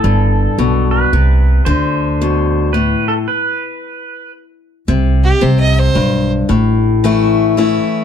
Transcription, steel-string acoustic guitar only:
0.04 G2
0.59 B2
1.13 C3
1.66 D3
2.21 B2
2.74 A2
4.88 C3
5.41 C3
5.95 G2
6.49 A2
7.04 E3 A3 C#4 E4
7.57 E3 A3 C#4 E4

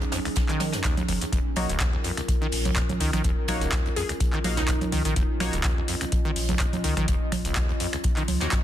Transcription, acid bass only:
0.01 D#2
0.12 F2
0.25 C#2
0.49 D#3
0.73 F#2
0.84 D#2
0.97 D#2
1.08 D#2
1.21 D#2
1.32 D#2
1.69 C#2
1.80 D#2
1.93 D#2
2.04 F2
2.17 C#2
2.41 D#3
2.65 C#2
2.76 D#1
2.89 D#2
3.00 D#3
3.13 D#3
3.24 D#2
3.61 C#2
3.72 D#2
3.85 D#2
3.96 F2
4.09 C#2
4.33 D#3
4.57 C#2
4.68 D#1
4.81 D#2
4.92 D#3
5.05 D#3
5.16 D#2
5.53 C#2
5.64 D#2
5.77 D#2
5.88 F2
6.01 C#2
6.25 D#3
6.49 C#2
6.60 D#1
6.73 D#2
6.84 D#3
6.97 D#3
7.08 D#2
7.45 C#2
7.56 D#2
7.69 D#2
7.80 F2
7.93 C#2
8.17 D#3
8.41 D#2
8.52 F#2

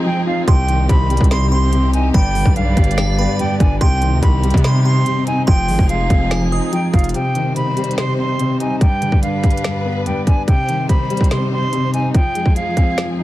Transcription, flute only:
0.06 G5
0.27 F5
0.48 G5
0.89 B5
1.31 C6
1.52 C6
1.94 G#5
2.14 G5
2.56 F5
3.39 G5
3.60 G#5
3.81 G5
4.23 B5
4.64 C6
4.85 C6
5.27 G#5
5.48 G5
5.89 F5
6.73 G5
6.94 F5
7.14 G5
7.56 B5
7.98 C6
8.19 C6
8.60 G#5
8.81 G5
9.23 F5
10.06 G5
10.27 G#5
10.48 G5
10.89 B5
11.31 C6
11.52 C6
11.94 G#5
12.14 G5
12.56 F5

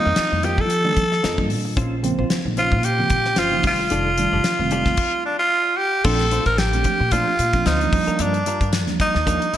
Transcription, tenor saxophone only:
Already playing: D#4
0.45 G4
0.60 A4
2.59 F4
2.85 G4
3.39 F4
3.67 F4
5.25 D4
5.39 F4
5.78 G4
6.04 A4
6.46 A#4
6.58 G4
7.12 F4
7.67 D#4
8.20 D4
9.01 D#4

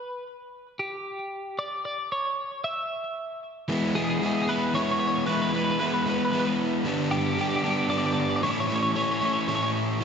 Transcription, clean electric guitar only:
Already playing: B4
0.79 G4
1.59 D5
1.85 D5
2.12 C#5
2.64 E5
3.95 G#4
4.04 G#4
4.10 G#4
4.19 G#4
4.26 G#4
4.34 G#4
4.42 G#4
4.49 B4
4.75 C#5
4.83 C#5
4.91 C#5
4.99 C#5
5.07 C#5
5.16 C#5
5.27 B4
5.33 B4
5.42 B4
5.49 B4
5.56 B4
5.64 B4
5.71 B4
5.80 B4
5.87 B4
5.94 B4
6.02 B4
6.09 B4
6.19 B4
6.25 B4
6.32 B4
6.40 B4
6.47 B4
7.11 G4
7.17 G4
7.26 G4
7.34 G4
7.41 G4
7.48 G4
7.56 G4
7.63 G4
7.71 G4
7.78 G4
7.90 D5
7.98 D5
8.06 D5
8.14 D5
8.20 D5
8.30 D5
8.36 D5
8.43 C#5
8.52 C#5
8.60 C#5
8.67 C#5
8.75 C#5
8.82 C#5
8.96 C#5
9.03 C#5
9.11 C#5
9.17 C#5
9.25 C#5
9.33 C#5
9.41 C#5
9.48 C#5
9.56 C#5
9.63 C#5

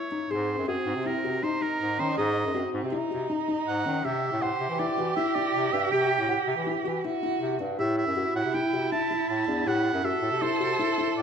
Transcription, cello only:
0.30 C4
1.43 D#4
2.55 C4
2.74 C4
2.93 D#4
4.05 G4
7.04 F#4
7.79 E4
10.04 A4

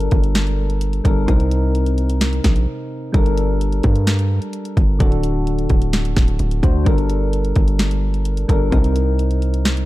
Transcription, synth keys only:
Already playing: G3 D4 A4 A#4
1.04 G3 D4 A4 A#4
1.26 C3 C4 D#4 A#4
3.12 G3 D4 A4 A#4
4.99 D3 D4 F#4 A4
6.63 D3 D4 F#4 C5
6.84 G3 D4 A4 A#4
8.48 G3 D4 A4 A#4
8.70 C3 C4 D#4 A#4

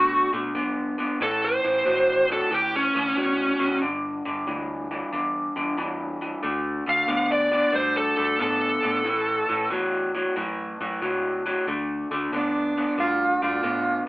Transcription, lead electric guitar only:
Already playing: F#4
1.23 A4
1.45 C5
2.33 A4
2.54 G4
2.76 C#4
6.89 F5
7.32 D5
7.76 C5
7.97 A4
8.42 A4

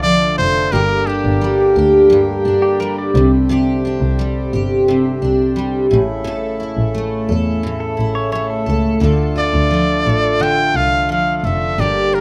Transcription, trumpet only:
0.03 D5
0.38 C5
0.72 A#4
1.07 G4
9.38 D5
10.42 G5
10.76 F5
11.12 F5
11.37 F5
11.45 E5
11.80 D5
12.14 A#4

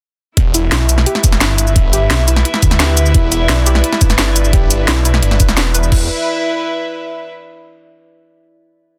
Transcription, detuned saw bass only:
0.37 E1
0.72 B1
1.24 G1
2.10 B1
2.62 D2
3.14 E1
3.49 B1
4.01 G1
4.88 B1
5.23 G1
5.57 E1
5.92 E1

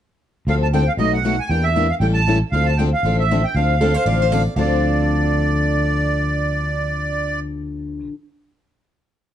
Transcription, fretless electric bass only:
0.47 D2
0.97 B1
1.50 E2
2.00 A1
2.52 D2
3.03 A1
3.55 D2
4.06 A1
4.56 D2

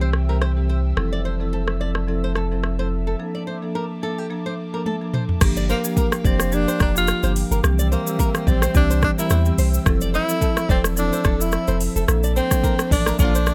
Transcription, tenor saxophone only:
5.70 A#3
6.26 C4
6.54 D4
6.82 D4
6.98 F4
7.93 A#3
8.48 C4
8.76 D4
9.04 D4
9.20 E4
10.15 E4
10.71 C4
10.99 D4
11.42 E4
12.37 C4
12.92 D4
13.20 D4

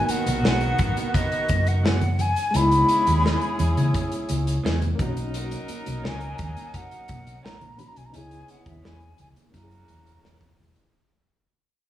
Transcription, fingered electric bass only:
0.28 A#1
0.45 B1
0.80 G#1
1.50 F#1
2.55 C#2
3.07 D#2
3.60 E2
3.78 C#3
4.30 C#2
4.65 E2
5.00 B1
5.88 B1
6.06 C#2
6.40 D#2
7.10 B1
7.45 A#1
7.97 B1
8.15 C#2
8.66 D#2
8.85 E2
9.20 C#2
9.54 F#2
9.89 E2
10.25 E2
10.60 E1

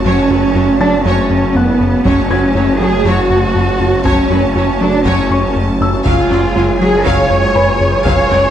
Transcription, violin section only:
Already playing: A5
0.06 C#5
0.32 B4
0.57 C#5
0.81 A4
1.07 C#5
2.06 C#5 A5
2.31 B4
2.56 C#5
2.82 A4
3.07 C#5
4.06 C#5
4.31 B4
4.56 C#5
4.82 A4
5.06 C#5
6.06 F5 G#5
6.31 D5
6.57 F5
6.81 C#5
7.06 F5
8.06 F5
8.31 D5

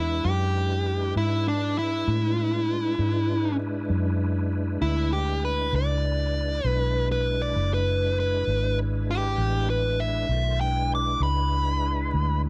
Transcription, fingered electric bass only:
Already playing: E2
0.25 F#2
1.16 G#2
2.08 A2
2.99 G#2
3.90 F#2
4.81 D2
5.73 C#2
6.64 B1
7.56 F#1
8.47 G#1
9.38 A1
10.29 B1
11.20 C#2
12.14 D2

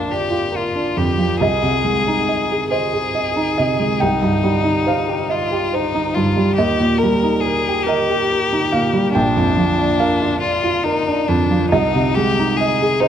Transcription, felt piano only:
Already playing: A#1 F2 F3 D4 F4 A#4 F5 G5
0.09 D5
0.31 F4
0.52 A#4
0.75 D4
0.97 F2
1.17 F3
1.41 C2 D#5
1.63 C3
1.84 G#3
2.07 D#4
2.29 D#5
2.52 G#4
2.71 C5 D#5
2.93 G#4
3.15 D#5
3.36 D#4
3.58 C3 D#5
3.80 G#3
4.00 C2 G5
4.22 G2
4.44 G3
4.64 D#4
4.86 C5 F5
5.08 G4
5.29 D#5
5.51 G4
5.73 C5
5.95 D#4
6.16 G2
6.37 G3
6.58 D#2 D#5
6.80 A#2
7.03 G3
7.23 D#4
7.45 A#4
7.67 G4
7.87 A#4 D#5
8.10 G4
8.31 A#4
8.53 D#4
8.72 A#2 F5
8.93 G3
9.15 A#1 G5
9.36 F2
9.57 F3
9.78 D4
10.00 A#4 F5
10.22 F4
10.42 D5
10.64 F4
10.86 A#4
11.07 D4
11.29 F2
11.51 F3
11.72 C2 D#5
11.95 C3
12.17 G#3
12.39 D#4
12.61 D#5
12.82 G#4
13.01 C5 D#5

